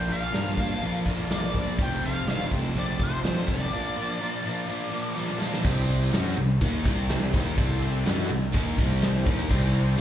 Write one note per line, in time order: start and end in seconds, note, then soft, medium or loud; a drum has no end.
0.00 0.21 A#1 medium
0.00 0.61 D4 medium
0.00 0.61 F4 medium
0.00 0.62 A#4 medium
0.00 0.11 G5 loud
0.08 0.32 A#2 medium
0.08 0.33 F3 medium
0.08 0.33 A#3 medium
0.08 0.33 D4 medium
0.08 1.03 F5 medium
0.08 open hi-hat soft
0.33 0.69 G2 medium
0.33 0.56 A#2 medium
0.33 0.57 F3 medium
0.33 0.57 A#3 medium
0.33 0.57 D4 medium
0.33 snare loud
0.33 open hi-hat medium
0.57 0.80 A#2 medium
0.57 0.81 F3 medium
0.57 0.81 A#3 medium
0.57 0.82 D4 medium
0.57 kick medium
0.57 open hi-hat soft
0.81 1.18 F2 medium
0.81 1.05 A#2 medium
0.81 1.07 F3 medium
0.81 1.06 A#3 medium
0.81 1.07 D4 medium
0.81 open hi-hat medium
1.05 1.30 A#2 medium
1.05 1.31 F3 medium
1.05 1.31 A#3 medium
1.05 1.63 D4 medium
1.05 1.31 D4 medium
1.05 1.63 F4 medium
1.05 1.64 A#4 medium
1.05 kick medium
1.05 open hi-hat soft
1.19 snare soft
1.30 1.67 A#1 medium
1.30 1.54 A#2 medium
1.30 1.55 F3 loud
1.30 1.55 A#3 medium
1.30 1.55 D4 medium
1.30 1.53 D5 medium
1.30 snare loud
1.30 open hi-hat medium
1.54 1.77 A#2 medium
1.54 1.80 F3 medium
1.54 1.78 A#3 medium
1.54 1.78 D4 medium
1.54 1.81 D5 medium
1.54 kick medium
1.54 open hi-hat soft
1.78 1.96 F1 medium
1.78 2.02 F2 medium
1.78 2.03 C3 medium
1.78 2.04 F3 medium
1.78 2.04 A3 loud
1.78 2.56 C4 medium
1.78 2.05 C4 loud
1.78 2.56 F4 medium
1.78 2.56 A4 medium
1.78 kick loud
1.78 open hi-hat medium
1.82 2.05 G5 loud
2.03 2.21 F1 medium
2.03 2.26 F2 medium
2.03 2.27 C3 medium
2.03 2.28 F3 medium
2.03 2.28 A3 medium
2.03 2.28 C4 medium
2.03 2.49 F5 medium
2.03 open hi-hat soft
2.27 2.45 F1 medium
2.27 2.50 F2 medium
2.27 2.50 C3 medium
2.27 2.52 F3 medium
2.27 2.51 A3 medium
2.27 2.52 C4 medium
2.27 snare loud
2.27 open hi-hat medium
2.51 2.69 F1 medium
2.51 2.75 F2 medium
2.51 2.75 C3 medium
2.51 2.76 F3 medium
2.51 2.76 A3 medium
2.51 2.76 C4 medium
2.51 kick medium
2.51 open hi-hat soft
2.75 2.93 A#1 medium
2.75 2.99 F2 medium
2.75 2.99 C3 medium
2.75 3.00 F3 medium
2.75 3.00 A3 medium
2.75 3.01 C4 medium
2.75 3.02 D5 loud
2.75 open hi-hat medium
2.99 3.18 F1 medium
2.99 3.23 F2 medium
2.99 3.23 C3 medium
2.99 3.23 F3 medium
2.99 3.24 A3 medium
2.99 3.56 C4 medium
2.99 3.25 C4 medium
2.99 3.57 F4 medium
2.99 3.57 A4 medium
2.99 kick medium
2.99 open hi-hat soft
3.03 3.51 C5 medium
3.24 3.41 F2 medium
3.24 3.46 F2 medium
3.24 3.47 C3 medium
3.24 3.47 F3 medium
3.24 3.48 A3 loud
3.24 3.48 C4 loud
3.24 snare loud
3.24 open hi-hat medium
3.48 3.66 F1 medium
3.48 3.70 F2 medium
3.48 3.71 C3 medium
3.48 3.71 F3 medium
3.48 3.71 A3 medium
3.48 3.71 C4 medium
3.48 5.38 D5 medium
3.48 kick medium
3.48 open hi-hat medium
3.70 3.94 A#2 medium
3.70 3.95 F3 medium
3.70 3.96 A#3 medium
3.70 4.47 D4 medium
3.70 3.96 D4 loud
3.70 4.48 F4 medium
3.70 4.48 A#4 medium
3.95 4.19 A#2 medium
3.95 4.20 F3 medium
3.95 4.20 A#3 medium
3.95 4.21 D4 medium
4.20 4.42 A#2 medium
4.20 4.43 F3 medium
4.20 4.43 A#3 medium
4.20 4.44 D4 medium
4.44 4.67 A#2 medium
4.44 4.68 F3 medium
4.44 4.68 A#3 medium
4.44 4.69 D4 medium
4.68 4.90 A#2 medium
4.68 4.91 F3 medium
4.68 4.91 A#3 medium
4.68 4.92 D4 loud
4.91 5.14 A#2 medium
4.91 5.15 F3 medium
4.91 5.16 A#3 medium
4.91 5.49 D4 medium
4.91 5.16 D4 medium
4.91 5.50 F4 medium
4.91 5.50 A#4 medium
4.91 5.00 F5 medium
5.01 5.16 G5 medium
5.16 5.38 A#2 medium
5.16 5.38 F3 medium
5.16 5.39 A#3 medium
5.16 5.40 D4 loud
5.16 5.47 A5 medium
5.16 snare medium
5.30 snare medium
5.40 5.63 A#2 medium
5.40 5.63 F3 medium
5.40 5.63 A#3 medium
5.40 5.64 D4 medium
5.40 snare medium
5.48 5.63 A#5 medium
5.54 snare medium
5.63 6.10 C2 medium
5.63 6.12 C3 loud
5.63 6.12 G3 loud
5.63 6.13 C4 loud
5.63 6.40 E4 medium
5.63 6.40 G4 medium
5.63 6.41 C5 medium
5.63 kick loud
5.63 crash loud
5.89 ride medium
6.12 6.36 F#2 medium
6.12 6.36 F#3 medium
6.12 6.36 C#4 loud
6.12 6.37 F#4 medium
6.12 snare loud
6.12 ride medium
6.26 snare soft
6.37 6.60 C2 medium
6.37 6.57 C3 medium
6.37 6.57 G3 medium
6.37 ride medium
6.61 6.84 D#2 medium
6.61 6.85 D#3 medium
6.61 6.85 A#3 medium
6.61 6.86 D#4 loud
6.61 kick loud
6.61 ride medium
6.85 7.31 C2 medium
6.85 7.33 C3 medium
6.85 7.33 G3 medium
6.85 7.33 C4 loud
6.85 kick loud
6.85 ride medium
7.09 7.47 E4 medium
7.09 7.47 G4 medium
7.09 7.48 C5 loud
7.09 snare loud
7.09 ride loud
7.23 snare soft
7.34 7.56 D#2 medium
7.34 7.56 D#3 medium
7.34 7.57 A#3 medium
7.34 7.57 D#4 loud
7.34 kick loud
7.34 ride medium
7.57 8.03 C2 medium
7.57 8.05 C3 loud
7.57 8.05 G3 loud
7.57 8.05 C4 loud
7.57 8.34 E4 medium
7.57 8.34 G4 medium
7.57 8.34 A4 loud
7.57 kick loud
7.57 ride loud
7.82 ride medium
8.05 8.28 F#2 medium
8.05 8.29 F#3 medium
8.05 8.29 C#4 medium
8.05 8.30 F#4 loud
8.05 snare loud
8.05 ride loud
8.20 snare soft
8.30 8.53 C2 medium
8.30 8.49 C3 medium
8.30 8.49 G3 medium
8.30 ride medium
8.53 8.77 D#2 loud
8.53 8.77 D#3 medium
8.53 8.77 A#3 loud
8.53 8.77 D#4 loud
8.53 kick loud
8.53 ride medium
8.78 9.23 C2 medium
8.78 9.26 C3 medium
8.78 9.26 G3 loud
8.78 9.26 C4 loud
8.78 kick medium
8.78 ride medium
9.02 9.40 E4 medium
9.02 9.40 G4 medium
9.02 9.41 C5 medium
9.02 snare loud
9.02 ride loud
9.16 snare soft
9.26 9.49 D#2 medium
9.26 9.49 D#3 medium
9.26 9.50 A#3 loud
9.26 9.50 D#4 medium
9.26 kick loud
9.26 ride medium
9.50 9.95 C2 loud
9.50 9.97 C3 loud
9.50 9.98 G3 loud
9.50 9.98 C4 loud
9.50 10.01 E4 medium
9.50 10.01 G4 medium
9.50 10.01 C5 loud
9.50 kick loud
9.50 crash loud
9.75 ride medium
9.98 10.01 F#3 medium